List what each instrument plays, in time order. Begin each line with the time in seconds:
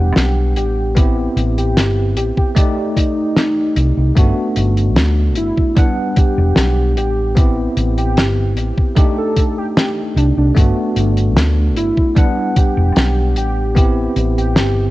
Already playing: tine electric piano G3 B3 D4 F#5, soft synth lead G4
0.16 fingered electric bass B1, snare, closed hi-hat
0.56 fingered electric bass A1, soft synth lead G4, closed hi-hat
0.95 tine electric piano B3 C4 E4 G4, kick, closed hi-hat
1.36 fingered electric bass A1, closed hi-hat
1.58 soft synth lead G4, closed hi-hat
1.76 fingered electric bass G1, snare, closed hi-hat
2.16 fingered electric bass A1, soft synth lead G4, closed hi-hat
2.37 soft synth lead G4, kick
2.55 tine electric piano A3 D#4 G4 D5, kick, closed hi-hat
2.97 soft synth lead D#4, kick, closed hi-hat
3.36 snare, closed hi-hat
3.76 fingered electric bass C2, closed hi-hat
3.97 fingered electric bass C2
4.15 fingered electric bass G1, tine electric piano A3 B3 D4 F#4, kick, closed hi-hat
4.56 fingered electric bass G1, closed hi-hat
4.77 closed hi-hat
4.96 fingered electric bass D2, snare, closed hi-hat
5.36 fingered electric bass G1, soft synth lead E4, closed hi-hat
5.58 kick
5.75 tine electric piano G3 B3 D4 F#5, kick, closed hi-hat
6.16 soft synth lead G4, kick, closed hi-hat
6.38 fingered electric bass E1
6.56 fingered electric bass B1, snare, closed hi-hat
6.97 fingered electric bass A1, soft synth lead G4, closed hi-hat
7.35 tine electric piano B3 C4 E4 G4, kick, closed hi-hat
7.77 fingered electric bass A1, closed hi-hat
7.98 soft synth lead G4, closed hi-hat
8.17 fingered electric bass G1, snare, closed hi-hat
8.57 fingered electric bass A1, closed hi-hat
8.78 kick
8.95 tine electric piano A3 D4 D#4 G4, kick, closed hi-hat
9.18 soft synth lead A4
9.36 kick, closed hi-hat
9.58 soft synth lead G4
9.77 soft synth lead G4, snare, closed hi-hat
10.16 fingered electric bass C2, soft synth lead D4, closed hi-hat
10.37 fingered electric bass C2, soft synth lead D4
10.55 fingered electric bass G1, tine electric piano A3 B3 D4 F#4, kick, closed hi-hat
10.96 fingered electric bass G1, closed hi-hat
11.17 closed hi-hat
11.36 fingered electric bass D2, snare, closed hi-hat
11.76 fingered electric bass G1, soft synth lead E4, closed hi-hat
11.97 kick
12.15 tine electric piano G3 B3 D4 F#5, kick, closed hi-hat
12.56 soft synth lead G4, kick, closed hi-hat
12.77 fingered electric bass E1
12.96 fingered electric bass B1, snare, closed hi-hat
13.36 fingered electric bass A1, soft synth lead G4, closed hi-hat
13.75 tine electric piano B3 C4 E4 G4, kick, closed hi-hat
14.16 fingered electric bass A1, closed hi-hat
14.38 soft synth lead G4, closed hi-hat
14.56 fingered electric bass G1, snare, closed hi-hat